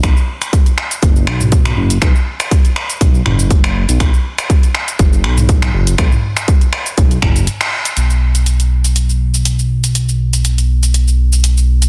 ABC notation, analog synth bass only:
X:1
M:4/4
L:1/16
Q:"Swing 16ths" 1/4=121
K:Clyd
V:1 name="Analog synth bass" clef=bass
B,,, z6 z F,,,2 B,,,4 F,,,2 | B,,, z6 z B,,,2 F,,,4- F,,, B,,, | B,,, z6 z F,,,2 B,,,4 F,,,2 | B,,, z6 z B,,,2 F,,,2 z4 |
B,,,16- | B,,,16 |]